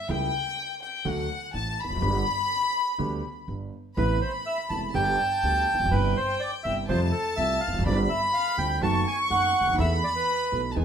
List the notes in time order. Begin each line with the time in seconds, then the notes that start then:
0.09 C#2 C#3 G3 A3 E4 G5
0.81 G5
1.05 D2 D3 F#3 A3 F#4 F#5
1.54 A1 A2 A5
1.80 B5
1.84 E1 E2
1.90 F1 F2
1.95 F#1 F#2
2.01 G1 G2 D3 G3 B3 G4
2.98 D2 D3 G3 B3 G4
3.48 G1 G2
3.97 A1 A2 C3 A3 B3 E4 B4 B5
4.21 C5
4.46 E5
4.69 E1 E2 C3 A3 B3 E4 A5
4.94 G1 G2 D3 G3 B3 G4 G5 A5
5.43 D2 D3 G3 B3 G4
5.74 E1 E2
5.80 F1 F2
5.86 F#1 F#2
5.91 G1 G2 C3 G3 B3 E4 B4 G5
6.16 C5
6.40 D5
6.64 G1 G2 C3 G3 B3 E4 E5
6.89 F2 C3 F3 G3 A3 F4 C5 A5
7.12 A4
7.37 C2 C3 G3 A3 F4 E5
7.61 F5
7.67 E1 E2
7.73 F1 F2
7.79 F#1 F#2
7.86 G1 G2 D3 G3 C4 F4 D5 B5
8.10 E5
8.34 F5
8.57 D2 D3 G3 C4 F4 G5
8.81 F#1 F#2 D#3 F#3 A3 B3 F#4 A5 C#6
9.07 G#5
9.30 F#1 F#2 D#3 F#3 A3 B3 F#4 F#5
9.61 C#2
9.66 D2
9.72 D#2
9.78 E2 E3 A3 B3 A4 E5 B5
10.04 D5
10.16 B4
10.52 B1 B2 E3 A3 B3 A4
10.70 A5
10.76 E2 E3 G#3 B3 G#4 G#5